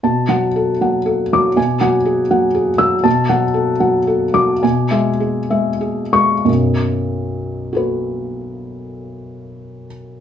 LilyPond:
<<
  \new Staff \with { instrumentName = "Felt piano" } { \time 3/4 \key cis \phrygian \tempo 4 = 106 << { r2 r8 d'''8 | r2 r8 e'''8 | r2 r8 d'''8 | r2 r8 cis'''8 |
r2 <fis' a' b'>4~ | <fis' a' b'>2. | } \\ { a''8 fis''8 a'8 fis''8 a'4 | gis''8 fis''8 gis'8 fis''8 gis'4 | a''8 fis''8 a'8 fis''8 a'4 | gis''8 e''8 gis'8 e''8 gis'4 |
r2. | r2. | } >> }
  \new Staff \with { instrumentName = "Felt piano" } { \clef bass \time 3/4 \key cis \phrygian b,8 fis4 fis4 fis8 | b,8 fis4 fis4 fis8 | b,8 fis4 fis4 fis8 | b,8 gis4 gis4 gis8 |
<b,, fis,>2.~ | <b,, fis,>2. | }
>>